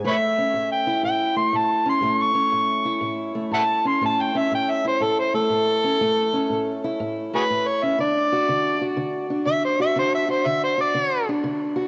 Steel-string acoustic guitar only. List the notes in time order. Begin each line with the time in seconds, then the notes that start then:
0.04 A2 A3
0.38 C#4
0.54 A2
0.87 E4
1.03 A2
1.36 A3
1.53 A2
1.86 C#4
2.01 A2 A3
2.34 C#4
2.52 A2
2.85 E4
3.01 A2
3.35 A3
3.52 A2
3.85 C#4
4.01 A2 A3
4.35 C#4
4.52 A2
4.85 E4
5.00 A2
5.34 A3
5.50 A2
5.84 C#4
6.01 A2 A3
6.33 C#4
6.50 A2
6.84 E4
7.00 A2
7.33 A3
7.50 A2
7.83 C#4
7.98 D3 D4
8.32 F#4
8.49 D3
8.81 F#4
8.97 D3
9.30 D4
9.46 D3
9.80 F#4
9.96 D3 D4
10.29 F#4
10.46 D3
10.78 F#4
10.94 D3
11.29 D4
11.44 D3
11.76 F#4